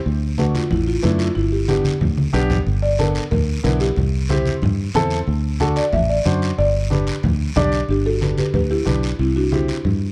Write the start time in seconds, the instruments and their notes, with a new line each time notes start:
0.06 fingered electric bass D2, long guiro
0.38 upright piano A3 D4 F#4, marimba B4, high conga, short guiro
0.55 marimba F4, high conga, short guiro
0.71 fingered electric bass A1, marimba E4, low conga, long guiro
0.87 marimba F4
1.03 fingered electric bass F#2, upright piano A3 D4 E4, marimba B4, high conga, short guiro
1.18 marimba F4, short guiro
1.35 fingered electric bass G1, marimba E4, long guiro
1.52 marimba G4
1.68 upright piano B3 D4 G4, marimba G4, high conga, short guiro
1.85 high conga, short guiro
2.01 fingered electric bass D2, low conga, long guiro
2.18 high conga
2.33 fingered electric bass B1, upright piano B3 D4 G4, short guiro
2.50 low conga, short guiro
2.67 fingered electric bass G1, long guiro
2.82 marimba D5
2.99 upright piano B3 D4 A4, marimba A#4, high conga, short guiro
3.15 short guiro
3.31 fingered electric bass D2, marimba A#4, low conga, long guiro
3.63 fingered electric bass B1, upright piano B3 D4 E4, marimba A#4, high conga, short guiro
3.80 marimba G4, short guiro
3.96 fingered electric bass C2, low conga, long guiro
4.29 upright piano C4 E4 G4, high conga, short guiro
4.46 high conga, short guiro
4.62 fingered electric bass G2, low conga, long guiro
4.94 fingered electric bass E2, upright piano C4 E4 A4, high conga, low conga, short guiro
5.10 short guiro
5.27 fingered electric bass D2, long guiro
5.60 upright piano D4 F#4 A4, high conga, short guiro
5.76 marimba D5, short guiro
5.93 fingered electric bass A1, marimba E5, low conga, long guiro
6.09 marimba D5
6.25 fingered electric bass F#2, upright piano D4 F#4 C5, high conga, short guiro
6.42 short guiro
6.58 fingered electric bass G1, marimba D5, long guiro
6.90 upright piano D4 G4 B4, high conga, short guiro
7.07 short guiro
7.23 fingered electric bass D2, low conga, long guiro
7.56 fingered electric bass B1, upright piano D4 G4 D5, high conga, low conga, short guiro
7.72 short guiro
7.89 fingered electric bass G1, marimba D4 G4, long guiro
8.06 marimba F#4 A4
8.21 upright piano D4 G4 B4, high conga, short guiro
8.37 marimba G4 B4, high conga, short guiro
8.54 fingered electric bass D2, marimba G4 B4, low conga, long guiro
8.71 marimba E4 G4
8.85 fingered electric bass B1, upright piano D4 G4 B4, high conga, short guiro
9.03 short guiro
9.19 fingered electric bass C2, marimba C4 E4, long guiro
9.36 marimba D4 F#4
9.52 upright piano C4 E4 G4, marimba E4 G4, high conga, short guiro
9.68 short guiro
9.85 fingered electric bass G2, low conga, long guiro